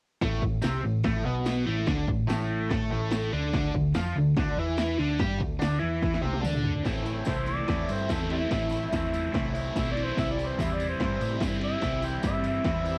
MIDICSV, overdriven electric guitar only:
0, 0, Header, 1, 2, 480
1, 0, Start_track
1, 0, Key_signature, 0, "minor"
1, 0, Tempo, 414365
1, 239, Time_signature, 4, 2, 24, 8
1, 15036, End_track
2, 0, Start_track
2, 0, Title_t, "Overdriven electric guitar"
2, 0, Program_c, 0, 29
2, 249, Note_on_c, 0, 45, 86
2, 262, Note_on_c, 0, 57, 116
2, 475, Note_off_c, 0, 45, 0
2, 484, Note_off_c, 0, 57, 0
2, 489, Note_on_c, 0, 45, 72
2, 677, Note_off_c, 0, 45, 0
2, 716, Note_on_c, 0, 48, 84
2, 723, Note_on_c, 0, 60, 91
2, 952, Note_off_c, 0, 48, 0
2, 956, Note_off_c, 0, 60, 0
2, 965, Note_on_c, 0, 45, 74
2, 1157, Note_off_c, 0, 45, 0
2, 1205, Note_on_c, 0, 45, 87
2, 1212, Note_on_c, 0, 57, 118
2, 1438, Note_off_c, 0, 45, 0
2, 1442, Note_off_c, 0, 57, 0
2, 1443, Note_on_c, 0, 47, 98
2, 1457, Note_on_c, 0, 59, 98
2, 1918, Note_off_c, 0, 47, 0
2, 1922, Note_on_c, 0, 45, 97
2, 1926, Note_off_c, 0, 59, 0
2, 1932, Note_on_c, 0, 57, 98
2, 2159, Note_off_c, 0, 45, 0
2, 2163, Note_off_c, 0, 57, 0
2, 2173, Note_on_c, 0, 50, 91
2, 2181, Note_on_c, 0, 62, 107
2, 2397, Note_off_c, 0, 50, 0
2, 2402, Note_on_c, 0, 45, 68
2, 2409, Note_off_c, 0, 62, 0
2, 2598, Note_off_c, 0, 45, 0
2, 2634, Note_on_c, 0, 45, 102
2, 2648, Note_on_c, 0, 57, 95
2, 3109, Note_off_c, 0, 57, 0
2, 3117, Note_off_c, 0, 45, 0
2, 3123, Note_on_c, 0, 57, 90
2, 3131, Note_on_c, 0, 69, 103
2, 3360, Note_on_c, 0, 45, 99
2, 3361, Note_off_c, 0, 57, 0
2, 3365, Note_off_c, 0, 69, 0
2, 3374, Note_on_c, 0, 57, 107
2, 3841, Note_off_c, 0, 45, 0
2, 3848, Note_off_c, 0, 57, 0
2, 3856, Note_on_c, 0, 50, 93
2, 3865, Note_on_c, 0, 62, 97
2, 4085, Note_off_c, 0, 50, 0
2, 4089, Note_off_c, 0, 62, 0
2, 4099, Note_on_c, 0, 50, 93
2, 4103, Note_on_c, 0, 62, 98
2, 4331, Note_off_c, 0, 50, 0
2, 4333, Note_off_c, 0, 62, 0
2, 4347, Note_on_c, 0, 50, 66
2, 4534, Note_off_c, 0, 50, 0
2, 4582, Note_on_c, 0, 65, 112
2, 4584, Note_on_c, 0, 53, 84
2, 4813, Note_off_c, 0, 65, 0
2, 4814, Note_off_c, 0, 53, 0
2, 4841, Note_on_c, 0, 50, 68
2, 5022, Note_off_c, 0, 50, 0
2, 5078, Note_on_c, 0, 50, 100
2, 5087, Note_on_c, 0, 62, 121
2, 5301, Note_off_c, 0, 50, 0
2, 5306, Note_off_c, 0, 62, 0
2, 5315, Note_on_c, 0, 52, 93
2, 5325, Note_on_c, 0, 64, 109
2, 5776, Note_off_c, 0, 52, 0
2, 5781, Note_on_c, 0, 50, 87
2, 5785, Note_off_c, 0, 64, 0
2, 5793, Note_on_c, 0, 62, 91
2, 6013, Note_off_c, 0, 50, 0
2, 6014, Note_on_c, 0, 55, 94
2, 6019, Note_off_c, 0, 62, 0
2, 6024, Note_on_c, 0, 67, 107
2, 6235, Note_on_c, 0, 50, 71
2, 6250, Note_off_c, 0, 55, 0
2, 6255, Note_off_c, 0, 67, 0
2, 6440, Note_off_c, 0, 50, 0
2, 6478, Note_on_c, 0, 50, 86
2, 6483, Note_on_c, 0, 62, 94
2, 6705, Note_off_c, 0, 50, 0
2, 6710, Note_off_c, 0, 62, 0
2, 6710, Note_on_c, 0, 52, 98
2, 6714, Note_on_c, 0, 64, 105
2, 7198, Note_off_c, 0, 52, 0
2, 7200, Note_off_c, 0, 64, 0
2, 7205, Note_on_c, 0, 48, 96
2, 7212, Note_on_c, 0, 60, 104
2, 7422, Note_off_c, 0, 48, 0
2, 7427, Note_on_c, 0, 50, 89
2, 7441, Note_off_c, 0, 60, 0
2, 7446, Note_on_c, 0, 62, 96
2, 7915, Note_on_c, 0, 45, 92
2, 7917, Note_off_c, 0, 50, 0
2, 7926, Note_on_c, 0, 52, 84
2, 7927, Note_off_c, 0, 62, 0
2, 7935, Note_on_c, 0, 57, 99
2, 7948, Note_on_c, 0, 64, 100
2, 7949, Note_on_c, 0, 60, 97
2, 8153, Note_off_c, 0, 64, 0
2, 8158, Note_on_c, 0, 64, 65
2, 8172, Note_off_c, 0, 60, 0
2, 8177, Note_on_c, 0, 60, 69
2, 8182, Note_off_c, 0, 57, 0
2, 8186, Note_on_c, 0, 57, 58
2, 8402, Note_off_c, 0, 52, 0
2, 8406, Note_on_c, 0, 52, 69
2, 8418, Note_off_c, 0, 57, 0
2, 8422, Note_on_c, 0, 57, 65
2, 8425, Note_off_c, 0, 60, 0
2, 8429, Note_on_c, 0, 60, 75
2, 8430, Note_off_c, 0, 64, 0
2, 8435, Note_on_c, 0, 64, 83
2, 8873, Note_off_c, 0, 45, 0
2, 8878, Note_on_c, 0, 45, 88
2, 8881, Note_off_c, 0, 52, 0
2, 8886, Note_on_c, 0, 52, 94
2, 8887, Note_off_c, 0, 57, 0
2, 8900, Note_off_c, 0, 60, 0
2, 8901, Note_on_c, 0, 57, 103
2, 8904, Note_on_c, 0, 60, 101
2, 8911, Note_off_c, 0, 64, 0
2, 8916, Note_on_c, 0, 64, 100
2, 9105, Note_off_c, 0, 64, 0
2, 9110, Note_on_c, 0, 64, 83
2, 9131, Note_off_c, 0, 60, 0
2, 9134, Note_off_c, 0, 57, 0
2, 9136, Note_on_c, 0, 60, 73
2, 9148, Note_on_c, 0, 57, 62
2, 9361, Note_off_c, 0, 52, 0
2, 9365, Note_on_c, 0, 52, 69
2, 9368, Note_off_c, 0, 57, 0
2, 9370, Note_off_c, 0, 45, 0
2, 9382, Note_on_c, 0, 57, 74
2, 9387, Note_off_c, 0, 60, 0
2, 9391, Note_on_c, 0, 60, 73
2, 9398, Note_off_c, 0, 64, 0
2, 9403, Note_on_c, 0, 64, 74
2, 9603, Note_off_c, 0, 64, 0
2, 9608, Note_on_c, 0, 64, 66
2, 9625, Note_off_c, 0, 60, 0
2, 9630, Note_on_c, 0, 60, 56
2, 9636, Note_off_c, 0, 57, 0
2, 9650, Note_on_c, 0, 57, 54
2, 9841, Note_on_c, 0, 45, 87
2, 9846, Note_off_c, 0, 57, 0
2, 9851, Note_off_c, 0, 52, 0
2, 9856, Note_on_c, 0, 52, 99
2, 9860, Note_on_c, 0, 57, 96
2, 9864, Note_off_c, 0, 64, 0
2, 9867, Note_off_c, 0, 60, 0
2, 9869, Note_on_c, 0, 64, 95
2, 9872, Note_on_c, 0, 60, 90
2, 10083, Note_off_c, 0, 64, 0
2, 10088, Note_on_c, 0, 64, 61
2, 10101, Note_off_c, 0, 60, 0
2, 10106, Note_on_c, 0, 60, 60
2, 10109, Note_off_c, 0, 57, 0
2, 10123, Note_on_c, 0, 57, 56
2, 10330, Note_off_c, 0, 52, 0
2, 10331, Note_off_c, 0, 45, 0
2, 10334, Note_off_c, 0, 57, 0
2, 10335, Note_on_c, 0, 52, 74
2, 10348, Note_on_c, 0, 57, 65
2, 10359, Note_off_c, 0, 60, 0
2, 10364, Note_on_c, 0, 60, 74
2, 10365, Note_off_c, 0, 64, 0
2, 10370, Note_on_c, 0, 64, 80
2, 10790, Note_on_c, 0, 45, 86
2, 10800, Note_off_c, 0, 52, 0
2, 10802, Note_off_c, 0, 57, 0
2, 10804, Note_on_c, 0, 52, 99
2, 10809, Note_off_c, 0, 60, 0
2, 10813, Note_on_c, 0, 60, 88
2, 10816, Note_on_c, 0, 57, 102
2, 10820, Note_off_c, 0, 64, 0
2, 10824, Note_on_c, 0, 64, 102
2, 11046, Note_off_c, 0, 64, 0
2, 11051, Note_on_c, 0, 64, 83
2, 11059, Note_off_c, 0, 60, 0
2, 11064, Note_on_c, 0, 60, 77
2, 11065, Note_off_c, 0, 57, 0
2, 11079, Note_on_c, 0, 57, 65
2, 11284, Note_off_c, 0, 45, 0
2, 11298, Note_off_c, 0, 52, 0
2, 11302, Note_on_c, 0, 52, 77
2, 11304, Note_off_c, 0, 57, 0
2, 11318, Note_on_c, 0, 57, 81
2, 11323, Note_off_c, 0, 60, 0
2, 11328, Note_on_c, 0, 60, 72
2, 11334, Note_off_c, 0, 64, 0
2, 11339, Note_on_c, 0, 64, 88
2, 11533, Note_off_c, 0, 64, 0
2, 11538, Note_on_c, 0, 64, 69
2, 11542, Note_off_c, 0, 60, 0
2, 11547, Note_on_c, 0, 60, 62
2, 11554, Note_off_c, 0, 57, 0
2, 11568, Note_on_c, 0, 57, 54
2, 11762, Note_off_c, 0, 52, 0
2, 11763, Note_on_c, 0, 48, 87
2, 11767, Note_on_c, 0, 52, 95
2, 11778, Note_off_c, 0, 57, 0
2, 11782, Note_off_c, 0, 60, 0
2, 11786, Note_on_c, 0, 60, 94
2, 11788, Note_on_c, 0, 55, 104
2, 11794, Note_off_c, 0, 64, 0
2, 11799, Note_on_c, 0, 64, 110
2, 12000, Note_off_c, 0, 64, 0
2, 12005, Note_on_c, 0, 64, 67
2, 12018, Note_off_c, 0, 60, 0
2, 12022, Note_on_c, 0, 60, 68
2, 12031, Note_off_c, 0, 55, 0
2, 12035, Note_on_c, 0, 55, 51
2, 12249, Note_off_c, 0, 52, 0
2, 12254, Note_on_c, 0, 52, 72
2, 12257, Note_off_c, 0, 55, 0
2, 12261, Note_on_c, 0, 55, 76
2, 12271, Note_off_c, 0, 60, 0
2, 12276, Note_on_c, 0, 60, 77
2, 12283, Note_off_c, 0, 64, 0
2, 12287, Note_on_c, 0, 64, 87
2, 12727, Note_off_c, 0, 48, 0
2, 12731, Note_on_c, 0, 48, 96
2, 12732, Note_off_c, 0, 52, 0
2, 12737, Note_on_c, 0, 52, 97
2, 12742, Note_off_c, 0, 55, 0
2, 12747, Note_on_c, 0, 55, 98
2, 12753, Note_off_c, 0, 60, 0
2, 12758, Note_on_c, 0, 60, 105
2, 12762, Note_off_c, 0, 64, 0
2, 12766, Note_on_c, 0, 64, 107
2, 12974, Note_off_c, 0, 64, 0
2, 12978, Note_on_c, 0, 64, 79
2, 12982, Note_off_c, 0, 60, 0
2, 12987, Note_on_c, 0, 60, 68
2, 13004, Note_off_c, 0, 55, 0
2, 13009, Note_on_c, 0, 55, 63
2, 13185, Note_off_c, 0, 52, 0
2, 13189, Note_on_c, 0, 52, 73
2, 13200, Note_off_c, 0, 55, 0
2, 13204, Note_on_c, 0, 55, 67
2, 13209, Note_off_c, 0, 60, 0
2, 13214, Note_on_c, 0, 60, 83
2, 13217, Note_off_c, 0, 64, 0
2, 13222, Note_on_c, 0, 64, 82
2, 13422, Note_off_c, 0, 64, 0
2, 13427, Note_on_c, 0, 64, 68
2, 13441, Note_off_c, 0, 60, 0
2, 13446, Note_on_c, 0, 60, 58
2, 13459, Note_off_c, 0, 55, 0
2, 13464, Note_on_c, 0, 55, 57
2, 13678, Note_off_c, 0, 48, 0
2, 13683, Note_on_c, 0, 48, 94
2, 13691, Note_off_c, 0, 55, 0
2, 13692, Note_off_c, 0, 52, 0
2, 13696, Note_on_c, 0, 52, 96
2, 13696, Note_on_c, 0, 55, 103
2, 13699, Note_off_c, 0, 60, 0
2, 13704, Note_on_c, 0, 60, 106
2, 13714, Note_off_c, 0, 64, 0
2, 13719, Note_on_c, 0, 64, 107
2, 13919, Note_off_c, 0, 64, 0
2, 13924, Note_on_c, 0, 64, 67
2, 13945, Note_off_c, 0, 60, 0
2, 13946, Note_off_c, 0, 55, 0
2, 13950, Note_on_c, 0, 60, 64
2, 13951, Note_on_c, 0, 55, 55
2, 14152, Note_off_c, 0, 52, 0
2, 14156, Note_on_c, 0, 52, 71
2, 14159, Note_off_c, 0, 55, 0
2, 14164, Note_on_c, 0, 55, 79
2, 14168, Note_off_c, 0, 60, 0
2, 14172, Note_on_c, 0, 60, 75
2, 14182, Note_off_c, 0, 64, 0
2, 14186, Note_on_c, 0, 64, 70
2, 14646, Note_off_c, 0, 48, 0
2, 14651, Note_on_c, 0, 48, 84
2, 14653, Note_off_c, 0, 52, 0
2, 14658, Note_on_c, 0, 52, 91
2, 14660, Note_off_c, 0, 55, 0
2, 14663, Note_off_c, 0, 60, 0
2, 14665, Note_on_c, 0, 55, 107
2, 14668, Note_on_c, 0, 60, 100
2, 14677, Note_off_c, 0, 64, 0
2, 14682, Note_on_c, 0, 64, 99
2, 14876, Note_off_c, 0, 64, 0
2, 14880, Note_on_c, 0, 64, 75
2, 14889, Note_off_c, 0, 60, 0
2, 14894, Note_on_c, 0, 60, 72
2, 14912, Note_off_c, 0, 55, 0
2, 14917, Note_on_c, 0, 55, 64
2, 15036, Note_off_c, 0, 48, 0
2, 15036, Note_off_c, 0, 52, 0
2, 15036, Note_off_c, 0, 55, 0
2, 15036, Note_off_c, 0, 60, 0
2, 15036, Note_off_c, 0, 64, 0
2, 15036, End_track
0, 0, End_of_file